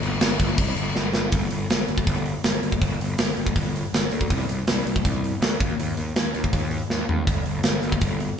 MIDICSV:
0, 0, Header, 1, 3, 480
1, 0, Start_track
1, 0, Tempo, 371287
1, 1722, Time_signature, 4, 2, 24, 8
1, 10852, End_track
2, 0, Start_track
2, 0, Title_t, "Picked electric bass"
2, 0, Program_c, 0, 34
2, 35, Note_on_c, 0, 31, 91
2, 223, Note_off_c, 0, 31, 0
2, 273, Note_on_c, 0, 31, 91
2, 460, Note_off_c, 0, 31, 0
2, 512, Note_on_c, 0, 31, 91
2, 700, Note_off_c, 0, 31, 0
2, 751, Note_on_c, 0, 36, 95
2, 939, Note_off_c, 0, 36, 0
2, 987, Note_on_c, 0, 31, 95
2, 1176, Note_off_c, 0, 31, 0
2, 1239, Note_on_c, 0, 31, 90
2, 1423, Note_off_c, 0, 31, 0
2, 1474, Note_on_c, 0, 31, 87
2, 1660, Note_off_c, 0, 31, 0
2, 1710, Note_on_c, 0, 31, 90
2, 1886, Note_off_c, 0, 31, 0
2, 1954, Note_on_c, 0, 31, 80
2, 2128, Note_off_c, 0, 31, 0
2, 2196, Note_on_c, 0, 31, 84
2, 2370, Note_off_c, 0, 31, 0
2, 2442, Note_on_c, 0, 31, 80
2, 2614, Note_off_c, 0, 31, 0
2, 2674, Note_on_c, 0, 31, 84
2, 3020, Note_off_c, 0, 31, 0
2, 3166, Note_on_c, 0, 31, 83
2, 3336, Note_off_c, 0, 31, 0
2, 3391, Note_on_c, 0, 31, 79
2, 3567, Note_off_c, 0, 31, 0
2, 3639, Note_on_c, 0, 31, 91
2, 3812, Note_off_c, 0, 31, 0
2, 3885, Note_on_c, 0, 31, 88
2, 4056, Note_off_c, 0, 31, 0
2, 4121, Note_on_c, 0, 31, 83
2, 4294, Note_off_c, 0, 31, 0
2, 4369, Note_on_c, 0, 31, 82
2, 4539, Note_off_c, 0, 31, 0
2, 4596, Note_on_c, 0, 31, 88
2, 4942, Note_off_c, 0, 31, 0
2, 5086, Note_on_c, 0, 31, 85
2, 5257, Note_off_c, 0, 31, 0
2, 5319, Note_on_c, 0, 38, 82
2, 5493, Note_off_c, 0, 38, 0
2, 5559, Note_on_c, 0, 36, 93
2, 5733, Note_off_c, 0, 36, 0
2, 5794, Note_on_c, 0, 36, 88
2, 5970, Note_off_c, 0, 36, 0
2, 6039, Note_on_c, 0, 36, 82
2, 6213, Note_off_c, 0, 36, 0
2, 6273, Note_on_c, 0, 36, 87
2, 6450, Note_off_c, 0, 36, 0
2, 6524, Note_on_c, 0, 36, 82
2, 6869, Note_off_c, 0, 36, 0
2, 6994, Note_on_c, 0, 38, 85
2, 7171, Note_off_c, 0, 38, 0
2, 7240, Note_on_c, 0, 39, 79
2, 7415, Note_off_c, 0, 39, 0
2, 7492, Note_on_c, 0, 39, 97
2, 7662, Note_off_c, 0, 39, 0
2, 7726, Note_on_c, 0, 39, 84
2, 7899, Note_off_c, 0, 39, 0
2, 7961, Note_on_c, 0, 39, 81
2, 8136, Note_off_c, 0, 39, 0
2, 8210, Note_on_c, 0, 39, 79
2, 8382, Note_off_c, 0, 39, 0
2, 8442, Note_on_c, 0, 39, 82
2, 8789, Note_off_c, 0, 39, 0
2, 8923, Note_on_c, 0, 39, 91
2, 9097, Note_off_c, 0, 39, 0
2, 9163, Note_on_c, 0, 39, 81
2, 9338, Note_off_c, 0, 39, 0
2, 9399, Note_on_c, 0, 31, 92
2, 9575, Note_off_c, 0, 31, 0
2, 9640, Note_on_c, 0, 31, 84
2, 9816, Note_off_c, 0, 31, 0
2, 9878, Note_on_c, 0, 31, 85
2, 10054, Note_off_c, 0, 31, 0
2, 10117, Note_on_c, 0, 31, 88
2, 10294, Note_off_c, 0, 31, 0
2, 10363, Note_on_c, 0, 31, 88
2, 10709, Note_off_c, 0, 31, 0
2, 10852, End_track
3, 0, Start_track
3, 0, Title_t, "Drums"
3, 38, Note_on_c, 9, 49, 63
3, 167, Note_off_c, 9, 49, 0
3, 270, Note_on_c, 9, 49, 80
3, 275, Note_on_c, 9, 38, 112
3, 399, Note_off_c, 9, 49, 0
3, 405, Note_off_c, 9, 38, 0
3, 513, Note_on_c, 9, 36, 83
3, 513, Note_on_c, 9, 49, 61
3, 642, Note_off_c, 9, 36, 0
3, 643, Note_off_c, 9, 49, 0
3, 745, Note_on_c, 9, 49, 84
3, 751, Note_on_c, 9, 36, 114
3, 874, Note_off_c, 9, 49, 0
3, 880, Note_off_c, 9, 36, 0
3, 989, Note_on_c, 9, 49, 65
3, 1118, Note_off_c, 9, 49, 0
3, 1236, Note_on_c, 9, 38, 63
3, 1365, Note_off_c, 9, 38, 0
3, 1467, Note_on_c, 9, 38, 89
3, 1596, Note_off_c, 9, 38, 0
3, 1705, Note_on_c, 9, 46, 72
3, 1713, Note_on_c, 9, 36, 100
3, 1834, Note_off_c, 9, 46, 0
3, 1842, Note_off_c, 9, 36, 0
3, 1947, Note_on_c, 9, 46, 56
3, 2076, Note_off_c, 9, 46, 0
3, 2201, Note_on_c, 9, 46, 74
3, 2206, Note_on_c, 9, 38, 105
3, 2330, Note_off_c, 9, 46, 0
3, 2335, Note_off_c, 9, 38, 0
3, 2435, Note_on_c, 9, 46, 49
3, 2554, Note_on_c, 9, 36, 85
3, 2564, Note_off_c, 9, 46, 0
3, 2676, Note_on_c, 9, 46, 66
3, 2677, Note_off_c, 9, 36, 0
3, 2677, Note_on_c, 9, 36, 87
3, 2805, Note_off_c, 9, 46, 0
3, 2806, Note_off_c, 9, 36, 0
3, 2917, Note_on_c, 9, 46, 48
3, 3046, Note_off_c, 9, 46, 0
3, 3154, Note_on_c, 9, 46, 62
3, 3159, Note_on_c, 9, 38, 100
3, 3283, Note_off_c, 9, 46, 0
3, 3288, Note_off_c, 9, 38, 0
3, 3402, Note_on_c, 9, 46, 53
3, 3521, Note_on_c, 9, 36, 77
3, 3531, Note_off_c, 9, 46, 0
3, 3641, Note_off_c, 9, 36, 0
3, 3641, Note_on_c, 9, 36, 89
3, 3641, Note_on_c, 9, 46, 68
3, 3770, Note_off_c, 9, 36, 0
3, 3770, Note_off_c, 9, 46, 0
3, 3894, Note_on_c, 9, 46, 51
3, 4023, Note_off_c, 9, 46, 0
3, 4117, Note_on_c, 9, 46, 75
3, 4122, Note_on_c, 9, 38, 105
3, 4246, Note_off_c, 9, 46, 0
3, 4252, Note_off_c, 9, 38, 0
3, 4354, Note_on_c, 9, 46, 51
3, 4480, Note_on_c, 9, 36, 81
3, 4483, Note_off_c, 9, 46, 0
3, 4600, Note_off_c, 9, 36, 0
3, 4600, Note_on_c, 9, 36, 88
3, 4601, Note_on_c, 9, 46, 75
3, 4730, Note_off_c, 9, 36, 0
3, 4731, Note_off_c, 9, 46, 0
3, 4857, Note_on_c, 9, 46, 55
3, 4986, Note_off_c, 9, 46, 0
3, 5095, Note_on_c, 9, 46, 74
3, 5100, Note_on_c, 9, 38, 105
3, 5224, Note_off_c, 9, 46, 0
3, 5229, Note_off_c, 9, 38, 0
3, 5320, Note_on_c, 9, 46, 55
3, 5440, Note_on_c, 9, 36, 81
3, 5449, Note_off_c, 9, 46, 0
3, 5564, Note_off_c, 9, 36, 0
3, 5564, Note_on_c, 9, 36, 85
3, 5566, Note_on_c, 9, 46, 76
3, 5693, Note_off_c, 9, 36, 0
3, 5695, Note_off_c, 9, 46, 0
3, 5807, Note_on_c, 9, 46, 59
3, 5936, Note_off_c, 9, 46, 0
3, 6042, Note_on_c, 9, 46, 74
3, 6047, Note_on_c, 9, 38, 107
3, 6171, Note_off_c, 9, 46, 0
3, 6177, Note_off_c, 9, 38, 0
3, 6295, Note_on_c, 9, 46, 51
3, 6411, Note_on_c, 9, 36, 86
3, 6424, Note_off_c, 9, 46, 0
3, 6529, Note_off_c, 9, 36, 0
3, 6529, Note_on_c, 9, 36, 86
3, 6530, Note_on_c, 9, 46, 64
3, 6658, Note_off_c, 9, 36, 0
3, 6660, Note_off_c, 9, 46, 0
3, 6777, Note_on_c, 9, 46, 49
3, 6906, Note_off_c, 9, 46, 0
3, 7009, Note_on_c, 9, 46, 66
3, 7014, Note_on_c, 9, 38, 99
3, 7138, Note_off_c, 9, 46, 0
3, 7143, Note_off_c, 9, 38, 0
3, 7245, Note_on_c, 9, 36, 106
3, 7256, Note_on_c, 9, 46, 52
3, 7375, Note_off_c, 9, 36, 0
3, 7386, Note_off_c, 9, 46, 0
3, 7493, Note_on_c, 9, 46, 68
3, 7622, Note_off_c, 9, 46, 0
3, 7720, Note_on_c, 9, 46, 51
3, 7850, Note_off_c, 9, 46, 0
3, 7963, Note_on_c, 9, 46, 70
3, 7969, Note_on_c, 9, 38, 109
3, 8093, Note_off_c, 9, 46, 0
3, 8098, Note_off_c, 9, 38, 0
3, 8205, Note_on_c, 9, 46, 51
3, 8326, Note_on_c, 9, 36, 85
3, 8334, Note_off_c, 9, 46, 0
3, 8442, Note_off_c, 9, 36, 0
3, 8442, Note_on_c, 9, 36, 85
3, 8446, Note_on_c, 9, 46, 72
3, 8572, Note_off_c, 9, 36, 0
3, 8575, Note_off_c, 9, 46, 0
3, 8674, Note_on_c, 9, 46, 54
3, 8803, Note_off_c, 9, 46, 0
3, 8923, Note_on_c, 9, 38, 57
3, 9052, Note_off_c, 9, 38, 0
3, 9167, Note_on_c, 9, 43, 82
3, 9297, Note_off_c, 9, 43, 0
3, 9400, Note_on_c, 9, 46, 72
3, 9402, Note_on_c, 9, 36, 106
3, 9529, Note_off_c, 9, 46, 0
3, 9531, Note_off_c, 9, 36, 0
3, 9640, Note_on_c, 9, 46, 56
3, 9770, Note_off_c, 9, 46, 0
3, 9870, Note_on_c, 9, 46, 75
3, 9875, Note_on_c, 9, 38, 109
3, 9999, Note_off_c, 9, 46, 0
3, 10004, Note_off_c, 9, 38, 0
3, 10120, Note_on_c, 9, 46, 51
3, 10243, Note_on_c, 9, 36, 80
3, 10249, Note_off_c, 9, 46, 0
3, 10358, Note_on_c, 9, 46, 71
3, 10363, Note_off_c, 9, 36, 0
3, 10363, Note_on_c, 9, 36, 94
3, 10487, Note_off_c, 9, 46, 0
3, 10492, Note_off_c, 9, 36, 0
3, 10605, Note_on_c, 9, 46, 51
3, 10734, Note_off_c, 9, 46, 0
3, 10852, End_track
0, 0, End_of_file